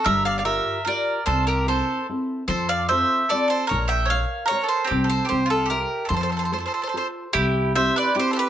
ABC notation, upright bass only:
X:1
M:3/4
L:1/8
Q:1/4=148
K:F
V:1 name="Upright bass" clef=bass
G,,,4 z2 | C,,4 z2 | F,,4 z2 | B,,,4 z2 |
C,,2 C,,4 | F,,4 z2 | [K:C] C,,4 z2 |]